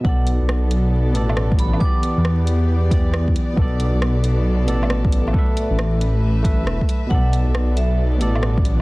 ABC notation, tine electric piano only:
X:1
M:4/4
L:1/16
Q:"Swing 16ths" 1/4=136
K:Bm
V:1 name="Tine electric piano"
[B,,B,Ad]8- [B,,B,Ad]2 [B,,B,Ad] z4 z | [E,B,Gd]8- [E,B,Gd]2 [E,B,Gd] z4 z | [B,,B,Ad]8- [B,,B,Ad]2 [B,,B,Ad] z4 z | [A,ABe]8- [A,ABe]2 [A,ABe] z4 z |
[B,,B,Ad]8- [B,,B,Ad]2 [B,,B,Ad]2 z4 |]